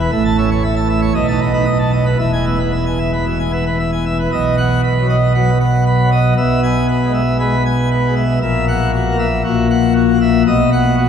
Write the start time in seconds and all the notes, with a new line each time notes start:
0.00 B4
0.12 A1 A2 E5
0.25 A5
0.38 C#4 E5
0.51 C#5
0.64 E5
0.76 A5
0.89 E5
1.02 C#5
1.15 B1 B2 D#5
1.28 D#4 A5
1.41 B3 D#5
1.53 D#4 B4
1.66 D#5
1.79 A5
1.93 D#5
2.06 B4
2.19 E1 E2 E5
2.33 G#5
2.46 B3 E5
2.59 B4
2.73 E5
2.86 G#5
2.99 E5
3.13 B4
3.26 B2 E5
3.39 G#5
3.52 B3 E5
3.66 B4
3.79 E5
3.92 G#5
4.06 E5
4.19 B4
4.32 B1 B2 D#5
4.58 F#5
4.83 B4
5.01 F#3
5.10 D#5
5.35 F#3 B4
5.61 F#5
5.86 B4
6.04 F#3
6.12 D#5
6.38 B1 B2 E5
6.63 G#5
6.89 B4
7.05 G#3
7.14 E5
7.40 G#3 B4
7.66 G#5
7.91 B4
8.08 G#3
8.17 E5
8.42 A#1 A#2 E5
8.68 F#5
8.94 F#4
9.11 A#3
9.19 E5
9.45 A#1 A#2 F#4
9.70 F#5
9.96 F#4
10.13 A#3
10.22 E5
10.47 B1 B2 D#5
10.73 F#5
10.97 F#4